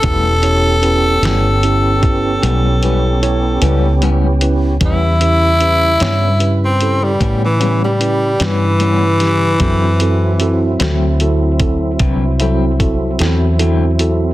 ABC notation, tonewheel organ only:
X:1
M:12/8
L:1/8
Q:3/8=50
K:Amix
V:1 name="Tonewheel organ"
[B,CG]12 | [C,G,B]12 | [F,=CE]12 |]